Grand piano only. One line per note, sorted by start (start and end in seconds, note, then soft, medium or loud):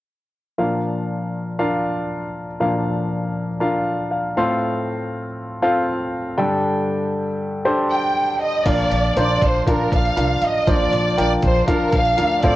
0.58 2.56 A#2 soft
0.58 2.56 F3 soft
0.58 1.46 D4 soft
0.58 1.46 F4 soft
0.58 1.46 A#4 soft
0.58 1.47 F5 medium
1.59 2.47 D4 medium
1.59 2.47 F4 medium
1.59 2.47 A#4 medium
1.59 2.47 F5 medium
2.60 4.33 A#2 soft
2.60 4.33 F3 soft
2.60 3.48 D4 medium
2.60 3.48 F4 medium
2.60 3.48 A#4 medium
2.60 3.48 F5 medium
3.60 4.36 D4 medium
3.60 4.36 F4 medium
3.60 4.36 A#4 medium
3.60 4.10 F5 medium
4.11 4.35 F5 medium
4.37 6.35 A2 medium
4.37 6.35 A3 soft
4.37 5.25 C4 medium
4.37 5.25 F4 medium
4.37 5.25 A4 medium
4.37 5.25 F5 medium
4.37 4.60 C6 medium
5.62 6.38 C4 medium
5.62 6.38 F4 medium
5.62 6.37 A4 medium
5.62 6.38 F5 medium
6.38 8.36 G2 medium
6.38 8.36 D3 medium
6.38 7.26 D4 medium
6.38 7.26 G4 medium
6.38 7.26 A4 medium
6.38 7.26 G5 medium
7.65 8.53 D4 medium
7.65 8.53 G4 medium
7.65 8.53 A4 medium
7.65 8.53 C5 medium
8.66 9.37 A#2 soft
8.66 9.38 F3 soft
8.66 9.10 D4 medium
8.66 9.10 F4 soft
8.66 9.10 A#4 soft
8.66 9.10 F5 medium
9.17 9.60 D4 medium
9.17 9.60 F4 soft
9.17 9.60 A#4 medium
9.17 9.60 C5 medium
9.68 10.11 D4 medium
9.68 10.11 F4 medium
9.68 10.11 A#4 medium
9.68 10.11 F5 medium
10.17 10.61 D4 medium
10.17 10.61 F4 medium
10.17 10.61 A#4 medium
10.17 10.61 F5 medium
10.67 11.39 A#2 soft
10.67 11.39 F3 soft
10.67 11.11 D4 medium
10.67 11.11 F4 soft
10.67 11.11 A#4 soft
10.67 11.12 C5 medium
11.18 11.62 D4 medium
11.18 11.62 F4 medium
11.18 11.62 A#4 medium
11.18 11.62 G5 medium
11.68 12.12 D4 medium
11.68 12.12 F4 medium
11.68 12.12 A#4 medium
11.68 12.12 F5 medium
12.18 12.43 D4 medium
12.18 12.42 F4 medium
12.18 12.44 A#4 soft
12.18 12.42 F5 medium
12.44 12.56 A2 medium
12.44 12.56 A3 medium
12.44 12.56 C4 medium
12.44 12.56 F4 medium
12.44 12.56 A4 medium
12.44 12.56 F5 medium